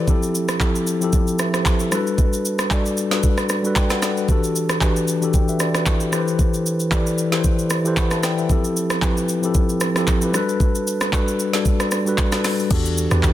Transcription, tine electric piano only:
0.07 F3 C4 E4 G4 A4
0.59 F3 C4 E4 G4 A4
1.00 F3 C4 E4 G4 A4
1.40 B4 E5
1.55 G4 C5
1.81 E4 A4
1.91 G3 D4 F#4 A4 B4
2.70 G3 D4 F#4 A4 D5
3.11 G3 D4 F#4 A4 B4
3.63 G3 D4 F#4 A4 B4
3.77 G5
3.91 B4 F#5
4.03 A4 D5
4.18 F#4 B4
4.28 E3 D4 F#4 G4 A4
4.80 E3 D4 F#4 G4 B4
5.21 E3 D4 F#4 G4 A4
5.35 D5 G5
5.49 B4 E5
5.61 A4 D5
5.76 F#4 B4
5.88 E4
6.02 D4 G4
6.11 E3 E4 G4 A4 B4 C5
6.90 E3 E4 G4 A4 B4 D5
7.31 E3 E4 G4 A4 B4 C5
7.84 E3 E4 G4 A4 B4 C5
7.98 F#5 B5
8.12 E5 A5
8.24 D5 G5
8.39 B4 E5
8.49 F3 C4 E4 G4 A4
9.01 F3 C4 E4 G4 B4
9.42 F3 C4 E4 G4 A4
9.95 F3 C4 E4 G4 A4
10.21 F3 C4 E4 G4 B4
10.33 G3 D4 F#4 A4 B4
11.12 G3 D4 F#4 A4 B4
11.53 G3 D4 F#4 A4 D5
12.05 G3 D4 F#4 A4 B4
12.31 G3 D4 F#4 A4 B4
12.70 E3 D4 F#4 G4 A4
13.11 E3 D4 F#4 G4 B4

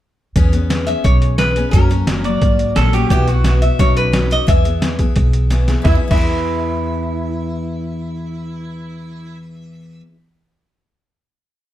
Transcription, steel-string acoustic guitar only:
0.36 E3 B3 C#4 G#4
0.52 B3 C#4 G#4
0.70 E3 B3 C#4 G#4
0.87 B3 C#4 G#4
1.39 E3 B3 C#4 G#4
1.56 B3 C#4 G#4
1.74 F#2 C#3 F#3 A#3 C#4 F#4
1.90 F#3 A#3 C#4 F#4
2.07 F#3 A#3 C#4 F#4
2.24 F#3 A#3 F#4
2.76 F#3 A#3 C#4 F#4
2.94 F#3 A#3 C#4 F#4
3.11 B2 E3 B3 E4 F#4
3.28 B3 E4 F#4
3.45 E3 B3 E4 F#4
3.62 B3 E4 F#4
3.79 B2 F#3 C#4 D#4 F#4
4.12 F#3 C#4 D#4 F#4
4.30 C#4 D#4 F#4
4.47 E3 B3 E4 G#4
4.64 B3 E4 G#4
4.82 E3 B3 E4 G#4
5.00 B3 E4 G#4
5.50 E3 B3 E4 G#4
5.68 B3 E4 G#4
5.82 E3
5.87 B3
5.91 E4 G#4
6.08 E3
6.13 B3
6.17 E4 G#4

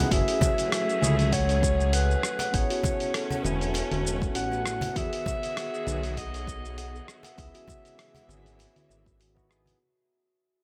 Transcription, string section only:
0.11 F#3 A3 C#4 G#4
2.54 A3 C#4
4.96 D#3 B3 F#4 G#4
7.38 C#3 E3 G#3 E5

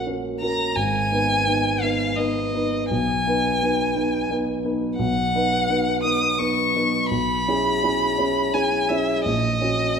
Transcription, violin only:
0.40 A#5
0.75 G#5
1.82 F5
2.16 D#5
2.91 G#5
4.97 F#5
6.03 D#6
6.39 C#6
7.10 B5
8.54 G#5
8.89 E5
9.25 D#5

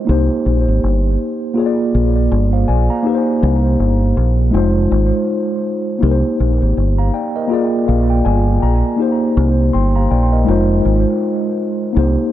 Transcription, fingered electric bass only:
0.09 C2
0.46 A#1
0.68 G#1
0.83 G1
1.95 A#1
2.32 G1
2.69 A#1
3.43 C2
3.80 G1
4.17 A#1
4.54 F1
4.91 G#1
6.03 C2
6.40 A#1
6.62 G#1
6.77 G1
7.89 A#1
8.26 G1
8.63 A#1
9.37 C2
9.74 G1
10.11 A#1
10.48 F1
10.85 G#1
11.97 C2

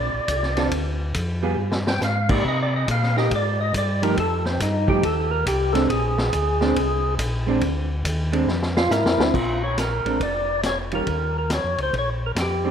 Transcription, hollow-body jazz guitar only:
0.57 D3 C4 F4 A4
1.42 G3 B3 F4 G#4
2.29 A#3 D#4 G4
3.16 A#3 D#4 G4
4.02 F3 A3 D#4 G4
4.88 F3 A3 D#4 G4
5.74 G#3 C4 D4
6.61 G#3 C4 D4
7.47 G#3 C4 D4
8.32 G#3 C4 D4
9.18 G#3 C4 D4
10.06 G#3 C4 D4
10.92 D#3 G3 C#4 F4
12.64 G#3 C4 D4

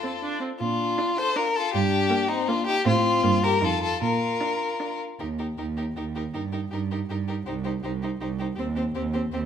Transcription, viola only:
0.03 C4
0.22 D4
0.41 C4
0.98 D4
1.36 D4
2.11 A#3
2.49 A#3
2.86 C4
3.24 A#3
3.62 D#4
4.41 D4
4.80 D4
5.20 D#4
5.39 D#4
5.58 D#4
5.77 D#4
5.96 D#4
6.15 D#4
6.34 D#4
6.54 D#4
6.73 D#4
6.92 D#4
7.10 D#4
7.29 D#4
7.48 D#4
7.65 D#4
7.84 D#4
8.04 D#4
8.21 D#4
8.40 D#4
8.59 C4
8.77 C4
8.96 C4
9.15 C4
9.34 C4

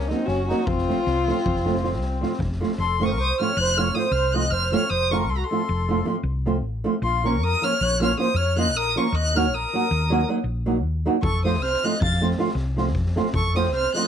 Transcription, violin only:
0.07 D#4
0.25 F#4
0.46 F#4
0.65 F4
2.79 C6
3.02 C#6 D#6
3.10 C#6
3.19 D#6
3.40 F6
3.57 F#6
3.78 F6
3.95 D#6
4.12 F6
4.33 F#6
4.50 F6
4.72 F6
4.89 D#6
5.11 C#6
5.29 C6
5.37 A#5
5.43 C6
7.03 C6
7.26 C#6
7.43 D#6
7.64 F6
7.83 F#6
8.02 F6
8.20 D#6
8.36 F6
8.58 F#6
8.77 D#6
8.97 C#6
9.15 F#6
9.36 F6
9.55 D#6
11.23 C#6
11.45 D#6
11.62 F6
11.84 F#6
12.02 A6
13.35 C#6
13.56 D#6
13.74 F6
13.94 F#6

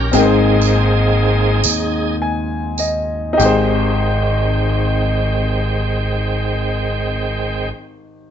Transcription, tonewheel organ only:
Already playing: C#4 A#4
0.12 G#3 A#3 C4 D#4 G#4
3.37 D#3 G#3 C4 G5

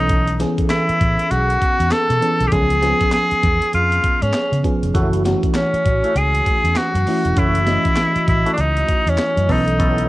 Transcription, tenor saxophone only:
Already playing: D#4
0.70 E4
1.31 F#4
1.92 A4
2.48 G4
2.52 G#4
3.13 G#4
3.74 F4
4.23 C#4
5.56 C#4
6.17 G#4
6.77 F#4
7.38 E4
8.29 E4
8.53 D4
8.60 D#4
9.09 C#4
9.52 D#4

